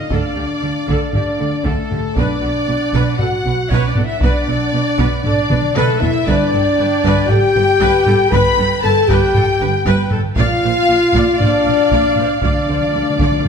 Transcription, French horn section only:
0.00 0.12 D#4 medium
0.12 1.11 D4 medium
1.13 1.64 D4 loud
1.64 2.16 A3 medium
2.16 3.19 D4 loud
3.18 3.69 F#4 loud
3.71 3.88 C#4 medium
3.88 4.05 D4 medium
4.03 4.21 E4 medium
4.19 5.07 D4 loud
5.24 5.74 D4 loud
5.75 6.01 A3 loud
6.01 6.27 E4 loud
6.28 7.30 D4 loud
7.28 8.32 G4 loud
8.30 8.83 B4 loud
8.83 9.08 A4 loud
9.07 10.11 G4 loud
10.35 11.35 F4 loud
11.39 12.40 D4 loud
12.41 13.48 D4 medium

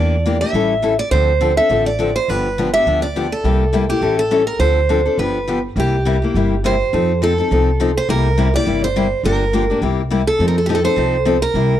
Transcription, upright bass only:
0.00 0.42 E2 medium
0.53 1.00 A1 medium
1.11 1.58 D2 medium
1.70 2.16 A1 medium
2.28 2.75 G1 medium
2.86 3.33 D2 medium
3.44 3.90 C2 medium
4.01 4.48 A1 medium
4.59 5.06 D2 medium
5.18 5.64 G1 medium
5.76 6.22 C2 medium
6.34 6.81 G1 medium
6.93 7.39 F2 medium
7.51 7.97 C2 medium
8.09 8.55 C2 medium
8.66 9.12 G1 medium
9.23 9.70 G1 medium
9.82 10.28 C2 medium
10.39 10.86 F2 medium
10.97 11.43 C2 medium
11.54 11.80 C2 medium

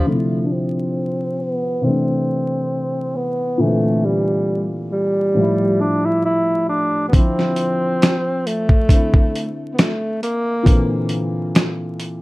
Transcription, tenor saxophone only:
0.08 0.47 A3 medium
0.45 0.54 D4 medium
0.52 1.42 C4 medium
1.40 1.85 B3 medium
1.84 3.17 C4 medium
3.16 3.62 B3 medium
3.61 4.06 A3 medium
4.05 4.68 G3 medium
4.93 5.82 G3 loud
5.81 6.07 D4 medium
6.06 6.25 E4 medium
6.25 6.66 E4 loud
6.69 7.05 D4 loud
7.08 7.15 B3 medium
7.14 8.48 C4 loud
8.46 9.54 A3 loud
9.73 9.80 B3 medium
9.79 10.22 A3 medium
10.23 11.07 A#3 medium

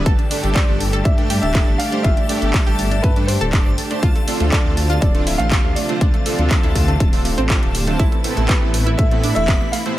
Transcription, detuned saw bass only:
0.06 0.17 G1 loud
0.44 0.54 G1 loud
0.68 1.02 G1 medium
1.05 1.39 G2 medium
1.43 1.63 D1 medium
1.68 1.78 G1 loud
2.04 2.15 G1 loud
2.42 2.52 G1 loud
2.67 3.00 G1 medium
3.04 3.38 G2 medium
3.41 3.61 D1 medium
3.66 3.76 G1 medium
4.03 4.13 D2 loud
4.40 4.50 D2 loud
4.65 4.99 D2 loud
5.02 5.36 D1 medium
5.39 5.60 A1 medium
5.64 5.74 D2 medium
6.01 6.12 D2 loud
6.39 6.49 D2 loud
6.63 6.97 D2 loud
7.00 7.34 D1 medium
7.38 7.58 A1 medium
7.63 7.96 D1 medium
7.99 8.10 A1 loud
8.37 8.47 A1 loud
8.62 8.95 A1 medium
8.99 9.33 A2 medium
9.36 9.56 E1 medium
9.61 9.71 A1 loud

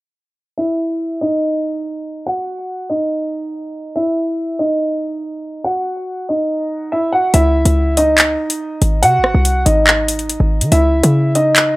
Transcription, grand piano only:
0.58 1.18 E4 medium
0.58 1.17 E5 medium
1.21 2.23 D#4 medium
1.21 2.23 D#5 medium
2.27 2.87 F#4 medium
2.27 2.86 F#5 loud
2.90 3.92 D#4 medium
2.90 3.91 D#5 medium
3.96 4.56 E4 medium
3.96 4.55 E5 medium
4.59 5.61 D#4 medium
4.59 5.61 D#5 medium
5.64 6.25 F#4 medium
5.64 6.24 F#5 loud
6.29 6.89 D#4 medium
6.29 6.88 D#5 medium
6.92 7.10 E4 medium
6.92 7.10 E5 medium
7.12 7.31 F#4 medium
7.12 7.30 F#5 medium
7.34 7.94 E4 medium
7.34 7.93 E5 loud
7.97 8.99 D#4 medium
7.97 8.99 D#5 medium
9.03 9.63 F#4 medium
9.03 9.62 F#5 loud
9.66 10.68 D#4 medium
9.66 10.68 D#5 medium
10.72 11.32 E4 medium
10.72 11.31 E5 loud
11.35 11.77 D#4 medium
11.35 11.77 D#5 medium

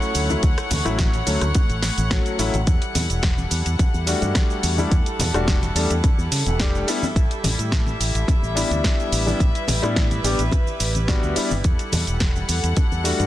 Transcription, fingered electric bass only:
0.15 0.35 D2 medium
0.43 0.53 D2 loud
0.71 0.81 D2 medium
0.86 1.21 A1 medium
1.27 1.37 D2 loud
1.41 1.51 D2 medium
1.70 1.89 A1 medium
1.98 2.17 A1 medium
2.39 2.50 A1 medium
2.54 2.63 A1 loud
2.67 2.78 E2 loud
2.95 3.06 E2 medium
3.10 3.45 E1 medium
3.51 3.62 E2 loud
3.66 3.75 E2 medium
3.79 muted fingered electric bass stroke soft
3.94 4.14 E2 medium
4.22 4.32 G2 loud
4.63 4.84 E2 medium
4.91 5.02 E2 loud
5.19 5.30 E2 medium
5.34 5.69 E1 medium
5.75 5.86 E2 loud
5.90 6.00 E2 medium
6.18 6.28 E2 loud
6.31 6.42 C#3 loud
6.46 6.81 E1 loud
7.16 7.26 A1 loud
7.44 7.54 A1 medium
7.59 7.94 A2 medium
8.00 8.10 A1 loud
8.15 8.24 A1 medium
8.43 8.62 A1 medium
8.71 8.80 D2 loud
9.12 9.32 A1 medium
9.40 9.51 A1 medium
9.68 9.79 A1 medium
9.83 10.18 A2 medium
10.24 10.35 A1 loud
10.39 10.48 A1 medium
10.80 11.16 A1 medium
11.23 11.32 D2 loud
11.37 muted fingered electric bass stroke soft
11.51 11.61 G1 medium
11.65 11.75 E2 loud
11.93 12.03 E2 medium
12.07 12.42 E1 medium
12.49 12.59 E2 loud
12.63 12.73 E2 medium
12.92 13.11 E2 medium
13.20 13.27 G2 loud

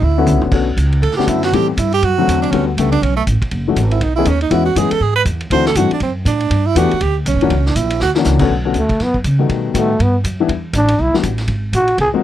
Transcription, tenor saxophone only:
0.04 0.43 E4 medium
1.02 1.16 A4 medium
1.17 1.30 G4 medium
1.29 1.43 E4 medium
1.45 1.55 F#4 medium
1.53 1.68 G4 loud
1.69 1.80 B3 medium
1.79 1.93 E4 medium
1.94 2.06 G4 loud
2.05 2.41 F#4 medium
2.42 2.53 D4 medium
2.52 2.67 C#4 medium
2.68 2.79 F#3 soft
2.77 2.91 A3 medium
2.92 3.04 D4 loud
3.03 3.16 C#4 medium
3.17 3.23 A3 medium
3.92 4.04 E4 medium
4.03 4.15 D#4 medium
4.16 4.30 E4 medium
4.28 4.42 C#4 medium
4.42 4.52 D#4 medium
4.51 4.65 E4 medium
4.66 4.79 F#4 medium
4.77 4.92 G#4 medium
4.91 5.04 A4 loud
5.02 5.15 G#4 medium
5.16 5.22 B4 loud
5.52 5.66 C5 loud
5.68 5.78 A4 loud
5.77 5.92 F#4 medium
5.93 6.02 D4 medium
6.03 6.12 C4 medium
6.27 6.68 D4 medium
6.66 6.79 E4 loud
6.77 7.03 F#4 medium
7.02 7.17 G4 loud
7.28 7.68 C#4 medium
7.67 7.78 D4 medium
7.76 8.01 E4 medium
8.03 8.11 F#4 medium

